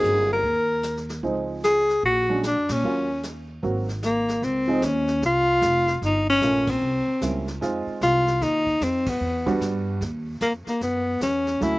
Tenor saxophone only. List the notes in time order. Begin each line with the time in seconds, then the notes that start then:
Already playing: G#4
0.33 A#4
1.65 G#4
2.05 F#4
2.47 D4
2.72 C#4
4.05 A#3
4.44 C4
4.85 C#4
5.26 F4
6.06 D#4
6.30 C#4
6.70 C4
8.03 F4
8.43 D#4
8.84 C4
9.09 B3
10.42 A#3
10.69 A#3
10.83 B3
11.23 C#4
11.63 E4